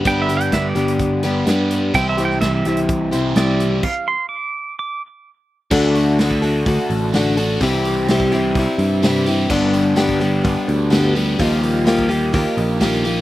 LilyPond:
<<
  \new Staff \with { instrumentName = "Pedal steel guitar" } { \time 4/4 \key g \major \tempo 4 = 127 \tuplet 3/2 { g''8 e''8 g''8 e''8 d''8. r16 } r2 | \tuplet 3/2 { g''8 e''8 g''8 e''8 e''8. r16 } r4 d''4 | f''8 c'''8 d'''4 d'''8 r4. | r1 |
r1 | r1 | r1 | }
  \new Staff \with { instrumentName = "Steel-string acoustic guitar" } { \time 4/4 \key g \major <g, d g b d' g'>8 <g b d' g'>8 <g b d' g'>8 <g b d' g'>4 <g b d' g'>8 <g b d' g'>4 | <c g c' e' g'>8 <c' e' g'>8 <g c' e' g'>8 <c' e' g'>4 <c' e' g'>8 <g c' e' g'>4 | r1 | <d a d' fis' a'>4 <d a d' fis' a'>8 <d' fis' a'>8 <a d' fis' a'>4 <d a d' fis' a'>8 <d' fis' a'>8 |
<c g c' e' g'>4 <c g c' e' g'>8 <c' e' g'>8 <g c' e' g'>4 <c g c' e' g'>8 <c' e' g'>8 | <g, d g b d' g'>4 <g, d g b d' g'>8 <g b d' g'>8 <g b d' g'>4 <g, d g b d' g'>8 <g b d' g'>8 | <ees f bes f' g'>4 <ees f bes f' g'>8 <bes f' g'>8 <f bes f' g'>4 <ees f bes f' g'>8 <bes f' g'>8 | }
  \new Staff \with { instrumentName = "Overdriven electric guitar" } { \time 4/4 \key g \major <g b d' b'>2~ <g b d' b'>8 <g b d' b'>8 <g b d' b'>4 | <c e g c' e' c''>2~ <c e g c' e' c''>8 <c e g c' e' c''>8 <c e g c' e' c''>4 | r1 | <d a d' fis'>8 <a d' fis'>8 <d a d' fis'>8 <a d' fis'>4. <d a d' fis'>8 <a d' fis'>8 |
<c e g c' g'>8 <g c' g'>8 <c e g c' g'>8 <g c' g'>4. <e g c' g'>8 <g c' g'>8 | <g, d g b d' g'>8 <g b d' g'>8 <g, d g b d' g'>8 <g b d' g'>4. <g b d' g'>8 <g b d' g'>8 | <ees g bes ees' g'>8 <bes ees' g'>8 <ees g bes ees' g'>8 <bes ees' g'>4. <g bes ees' g'>8 <bes ees' g'>8 | }
  \new Staff \with { instrumentName = "Picked electric bass" } { \clef bass \time 4/4 \key g \major g,,4. g,,4. g,4 | c,4. c,4. c,4 | r1 | d,2 d,16 r16 a,,4. |
c,2 c,16 r16 g,4. | g,,2 g,,16 r16 d,4. | ees,2 ees,16 r16 bes,,4. | }
  \new DrumStaff \with { instrumentName = "Drums" } \drummode { \time 4/4 <hh bd>8 hh16 hh16 <hh bd sn>8 hh16 hh16 <hh bd>8 hh8 <hh sn>8 hh8 | <hh bd>8 hh16 sn16 <hh bd sn>8 hh16 hh16 <hh bd>8 hh8 <hh sn>8 hh8 | <cymc bd>4 r4 r4 r4 | <cymc bd>8 hho8 <hho sn>16 bd16 hho8 <hho bd>8 hho8 <hho sn>8 hho8 |
<hho bd>8 hho8 <hho sn>16 bd16 hho8 <hho bd>8 hho8 <hho sn>8 hho8 | <cymc bd>8 hho8 <hho sn>16 bd16 hho8 <hho bd>8 hho8 <hho sn>8 hho8 | <hho bd>8 hho8 <hho sn>16 bd16 hho8 <hho bd>8 hho8 <hho bd sn>16 sn16 hho8 | }
>>